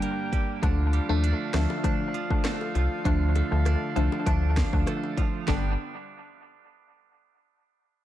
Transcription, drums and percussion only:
0.02 closed hi-hat
0.33 kick, closed hi-hat
0.63 kick, closed hi-hat
0.93 closed hi-hat
1.24 closed hi-hat
1.54 cross-stick, snare, closed hi-hat, high bongo
1.70 high bongo
1.84 kick, closed hi-hat
2.14 closed hi-hat
2.30 kick
2.44 cross-stick, snare, closed hi-hat, high bongo
2.61 high bongo
2.75 closed hi-hat, low bongo
3.05 kick, closed hi-hat
3.35 closed hi-hat, high bongo
3.65 cross-stick, closed hi-hat, high bongo
3.96 closed hi-hat, high bongo
4.12 high bongo
4.26 kick, closed hi-hat
4.57 kick, cross-stick, snare, closed hi-hat
4.73 kick
4.86 cross-stick, closed hi-hat, high bongo
5.03 high bongo
5.17 kick, closed hi-hat, low bongo
5.48 kick, snare, high bongo

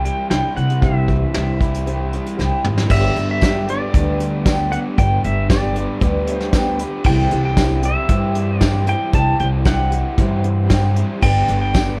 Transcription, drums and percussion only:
0.05 closed hi-hat
0.30 snare, closed hi-hat
0.57 closed hi-hat
0.70 closed hi-hat
0.82 kick, closed hi-hat
1.08 kick, closed hi-hat
1.34 snare, closed hi-hat
1.60 kick, closed hi-hat
1.74 closed hi-hat
1.87 closed hi-hat
2.13 closed hi-hat
2.26 closed hi-hat
2.39 snare
2.65 mid tom
2.78 snare
2.90 kick, crash
3.16 closed hi-hat
3.41 kick, snare, closed hi-hat, tambourine
3.68 closed hi-hat
3.94 kick, closed hi-hat
4.20 closed hi-hat
4.46 kick, snare, closed hi-hat, tambourine
4.72 closed hi-hat
4.98 kick, closed hi-hat
5.24 closed hi-hat
5.49 kick, snare, closed hi-hat, tambourine
5.75 closed hi-hat
6.01 kick, closed hi-hat
6.27 closed hi-hat
6.40 snare
6.53 kick, snare, closed hi-hat, tambourine
6.79 closed hi-hat
7.04 kick, crash
7.31 closed hi-hat
7.57 kick, snare, closed hi-hat, tambourine
7.83 closed hi-hat
8.09 kick, closed hi-hat
8.35 closed hi-hat
8.61 kick, snare, closed hi-hat, tambourine
8.87 closed hi-hat
9.13 kick, closed hi-hat
9.39 closed hi-hat
9.65 kick, snare, closed hi-hat, tambourine
9.92 closed hi-hat
10.18 kick, closed hi-hat
10.44 closed hi-hat
10.70 kick, snare, closed hi-hat, tambourine
10.96 closed hi-hat
11.22 kick, crash
11.48 closed hi-hat
11.75 kick, snare, closed hi-hat, tambourine

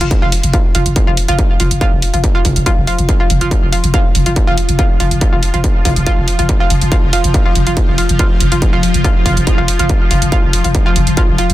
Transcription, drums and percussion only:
0.01 closed hi-hat
0.11 kick, closed hi-hat
0.32 open hi-hat
0.43 closed hi-hat
0.53 kick, closed hi-hat
0.75 open hi-hat
0.86 closed hi-hat
0.96 kick, closed hi-hat
1.17 open hi-hat
1.28 closed hi-hat
1.39 kick, closed hi-hat
1.60 open hi-hat
1.71 closed hi-hat
1.81 kick, closed hi-hat
2.02 open hi-hat
2.14 closed hi-hat
2.24 kick, closed hi-hat
2.45 kick, open hi-hat
2.56 closed hi-hat
2.66 kick, closed hi-hat
2.87 open hi-hat
2.98 closed hi-hat
3.09 kick, closed hi-hat
3.30 open hi-hat
3.41 closed hi-hat
3.51 kick, closed hi-hat
3.73 open hi-hat
3.84 closed hi-hat
3.94 kick, closed hi-hat
4.15 open hi-hat
4.26 closed hi-hat
4.36 kick, closed hi-hat
4.58 open hi-hat
4.69 closed hi-hat
4.79 kick, closed hi-hat
5.00 open hi-hat
5.11 closed hi-hat
5.21 kick, closed hi-hat
5.43 open hi-hat
5.54 closed hi-hat
5.64 kick, closed hi-hat
5.85 kick, open hi-hat
5.96 closed hi-hat
6.06 kick, closed hi-hat
6.28 open hi-hat
6.39 closed hi-hat
6.49 kick, closed hi-hat
6.70 open hi-hat
6.81 closed hi-hat
6.92 kick, closed hi-hat
7.13 open hi-hat
7.24 closed hi-hat
7.34 kick, closed hi-hat
7.55 open hi-hat
7.67 closed hi-hat
7.77 kick, closed hi-hat
7.98 open hi-hat
8.09 closed hi-hat
8.19 kick, closed hi-hat
8.40 open hi-hat
8.52 closed hi-hat
8.62 kick, closed hi-hat
8.83 open hi-hat
8.94 closed hi-hat
9.04 kick, closed hi-hat
9.26 kick, open hi-hat
9.37 closed hi-hat
9.47 kick, closed hi-hat
9.68 open hi-hat
9.79 closed hi-hat
9.89 kick, closed hi-hat
10.11 open hi-hat
10.22 closed hi-hat
10.32 kick, closed hi-hat
10.53 open hi-hat
10.64 closed hi-hat
10.75 kick, closed hi-hat
10.96 open hi-hat
11.07 closed hi-hat
11.17 kick, closed hi-hat
11.38 open hi-hat
11.50 closed hi-hat

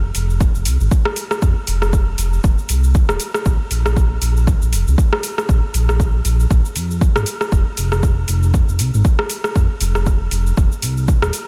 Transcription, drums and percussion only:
0.15 open hi-hat, shaker
0.30 shaker
0.40 kick, shaker
0.55 shaker
0.65 open hi-hat, shaker
0.80 shaker
0.91 kick, shaker
1.05 cross-stick
1.16 open hi-hat, shaker
1.31 cross-stick, shaker
1.42 kick, shaker
1.67 open hi-hat, shaker
1.82 cross-stick, shaker
1.93 kick, shaker
2.18 open hi-hat, shaker
2.33 shaker
2.44 kick, shaker
2.58 shaker
2.69 open hi-hat, shaker
2.84 shaker
2.95 kick, shaker
3.09 cross-stick, shaker
3.20 open hi-hat, shaker
3.34 cross-stick, shaker
3.46 kick, shaker
3.71 open hi-hat, shaker
3.86 cross-stick, shaker
3.96 kick, shaker
4.22 open hi-hat, shaker
4.37 shaker
4.47 kick, shaker
4.62 shaker
4.73 open hi-hat, shaker
4.88 shaker
4.98 kick, shaker
5.13 cross-stick
5.23 open hi-hat, shaker
5.38 cross-stick, shaker
5.49 kick, shaker
5.74 open hi-hat, shaker
5.89 cross-stick, shaker
6.00 kick, shaker
6.25 open hi-hat, shaker
6.40 shaker
6.51 kick, shaker
6.65 shaker
6.76 open hi-hat, shaker
6.91 shaker
7.01 kick, shaker
7.16 cross-stick, shaker
7.26 open hi-hat, shaker
7.41 cross-stick, shaker
7.52 kick, shaker
7.77 open hi-hat, shaker
7.92 cross-stick, shaker
8.03 kick, shaker
8.28 open hi-hat, shaker
8.43 shaker
8.54 kick, shaker
8.69 shaker
8.79 open hi-hat, shaker
8.94 shaker
9.05 kick, shaker
9.19 cross-stick
9.30 open hi-hat, shaker
9.44 cross-stick, shaker
9.56 kick, shaker
9.81 open hi-hat, shaker
9.95 cross-stick, shaker
10.06 kick, shaker
10.31 open hi-hat, shaker
10.47 shaker
10.57 kick, shaker
10.72 shaker
10.82 open hi-hat, shaker
10.97 shaker
11.08 kick, shaker
11.22 cross-stick, shaker
11.33 open hi-hat, shaker

